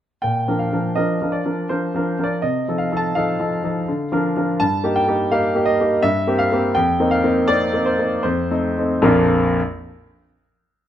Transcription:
grand piano
0.22 A#2 G5
0.48 F3 D4 A#4
0.59 F5
0.73 F3 D4 A#4
0.95 F3 D4 A#4 D#5
1.22 F3 D4 A#4
1.32 D5
1.45 F3 D4 A#4
1.69 F3 D4 A#4 C5
1.95 F3 D4 A#4
2.19 F3 D4 A#4
2.24 D5
2.42 C3 D#5
2.68 F3 D#4 A4
2.78 F5
2.92 F3 D#4 A4
2.97 A5
3.15 F3 D#4 A4 F5
3.40 F3 D#4 A4
3.64 F3 D#4 A4
3.88 D3
4.12 F3 D4 A#4
4.37 F3 D4 A#4
4.60 G2 A5
4.84 A#3 D#4 G4
4.96 G5
5.08 A#3 D#4 G4
5.31 A#3 D#4 G4 F5
5.55 A#3 D#4 G4
5.66 D#5
5.80 A#3 D#4 G4
6.03 G2 E5
6.27 A#3 C4 G4
6.39 F5
6.52 A#3 C4 G4
6.75 F2 G5
7.00 A#3 C4 D#4
7.11 F5
7.24 A#3 C4 D#4
7.48 A#3 C4 D#4 D5
7.74 A#3 C4 D#4
7.86 C5
7.99 A#3 C4 D#4
8.23 F2 C5
8.51 A3 C4 D#4
8.78 A3 C4 D#4
9.02 A#1 F2 F3 A#3 D4 F4 A#4

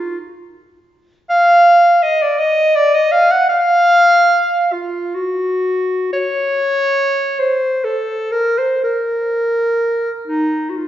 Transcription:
clarinet
Already playing: F4
1.29 F5
2.02 D#5
2.22 D5
2.39 D#5
2.75 D5
2.95 D#5
3.12 F5
3.32 F#5
3.49 F5
4.72 F4
5.15 F#4
6.13 C#5
7.39 C5
7.84 A4
8.31 A#4
8.58 C5
8.84 A#4
10.27 D#4
10.70 F#4
10.77 F4

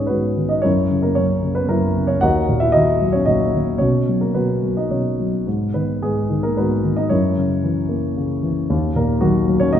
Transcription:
grand piano
Already playing: G#2 D#3 G#3 B3 C#4 G#4 B4 C#5
0.07 G#2 B3 F#4 B4
0.37 D#3
0.49 D#4 D#5
0.62 F#2 C#4 E4 A#4 C#5
0.90 C#3
1.03 A#3 A#4
1.15 F#2 C#4 A#4 C#5
1.42 C#3
1.55 B3 B4
1.68 F#2 A#3 E4 A#4
1.96 C#3
2.07 C#4 C#5
2.21 D#2 F#4 A#4 D#5 F#5
2.49 A#2
2.60 E4 E5
2.72 D#3 D#4 F#4 D#5
3.01 F#3
3.12 C#4 C#5
3.26 A#2 D#4 F#4 D#5
3.54 D#3
3.78 B2 C#4 F#4 C#5
4.08 F#3
4.21 A#3 A#4
4.34 B2 B3 F#4 B4
4.63 F#3
4.77 D#4 D#5
4.90 B2 C#4 F#4 C#5
5.19 F#3
5.47 G#2
5.74 D#3 B3 B4
6.02 G#2 G#3 B3 G#4
6.30 D#3
6.43 A#3 A#4
6.57 G#2 B3 F#4 B4
6.84 D#3
6.97 D#4 D#5
7.10 F#2 C#4 E4 A#4 C#5
7.37 C#3
7.63 E3
7.89 A#3
8.17 C#3
8.43 E3
8.70 D#2
8.96 A#2 A#3 A#4
9.21 D#3 F#3 A#3 F#4
9.48 F#3
9.60 C#4 C#5
9.73 A#2 D#4 F#4 D#5

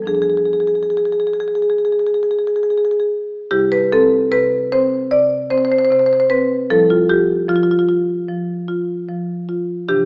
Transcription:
marimba
0.02 F2 F3 D4
0.07 G#4
0.15 G#4
0.22 G#4
0.29 G#4
0.37 G#4
0.46 G#4
0.53 G#4
0.60 G#4
0.67 G#4
0.75 G#4
0.83 G#4
0.90 G#4
0.97 G#4
1.05 G#4
1.12 G#4
1.20 G#4
1.27 G#4
1.33 G#4
1.40 G#4
1.48 G#4
1.55 G#4
1.62 G#4
1.70 G#4
1.78 G#4
1.85 G#4
1.92 G#4
1.99 G#4
2.07 G#4
2.14 G#4
2.23 G#4
2.31 G#4
2.39 G#4
2.47 G#4
2.56 G#4
2.63 G#4
2.70 G#4
2.78 G#4
2.85 G#4
2.91 G#4
3.00 G#4
3.51 C3 G3 E4 G4
3.72 B4
3.92 C4 A4
4.31 C3 B4
4.72 C4 C5
5.11 C3 D5
5.50 C4 C5
5.58 C5
5.65 C5
5.72 C5
5.78 C5
5.85 C5
5.90 C3 C5
6.00 C5
6.06 C5
6.13 C5
6.20 C5
6.30 C4 B4
6.70 F3 G3 E4 A4
6.90 F4
7.09 F4 G4
7.49 F3 F4
7.56 F4
7.63 F4
7.71 F4
7.79 F4
7.89 F4
8.28 F3
8.68 F4
9.08 F3
9.49 F4
9.88 C3 E3 D4 G4

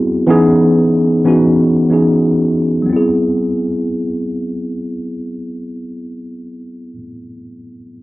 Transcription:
tine electric piano
Already playing: F#3 B3 C4 E4 F#4 G#4
0.27 E3 B3 C#4 D#4 G#4
1.24 E3 B3 C#4 D#4 F#4
1.89 E3 B3 C#4 D#4 G#4
2.82 F#3 B3
2.89 C4 E4
2.97 G#4

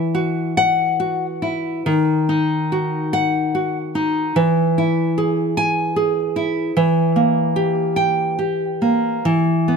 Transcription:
nylon-string guitar
Already playing: E3 E4
0.15 F#4
0.57 F#5
1.00 F#4
1.42 E4
1.86 D#3
2.29 D#4
2.72 F#4
3.13 F#5
3.55 F#4
3.95 D#4
4.36 E3
4.78 E4
5.18 G#4
5.57 G#5
5.96 G#4
6.36 E4
6.77 E3
7.16 A#3
7.56 G4
7.96 G5
8.39 G4
8.82 A#3
9.25 E3
9.68 B3

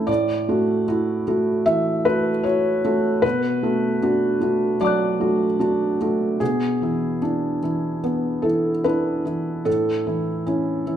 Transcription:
felt piano
Already playing: E3 A3 C#4 E4 C#5
0.07 A2 D5
0.49 A3 F#4
0.88 E4 F#4
1.28 A3 F#4
1.66 E3 E5
2.05 A3 F#4 B4
2.43 E4 F#4 C#5
2.85 A3 F#4
3.22 B2 B4
3.63 A3 F#4
4.02 D4 F#4
4.41 A3 F#4
4.81 F#3 D5 A5 D6
4.87 F#6
5.20 A3 F#4
5.59 D4 F#4
6.01 A3 F#4
6.40 B2 G#4
6.82 E3 E4
7.22 D4 E4
7.63 E3 E4
8.04 B3
8.42 E3 E4 A4
8.84 D4 E4 B4
9.25 E3 E4
9.65 A2 A4
10.06 E3 E4
10.47 C#4 E4
10.86 E3 E4

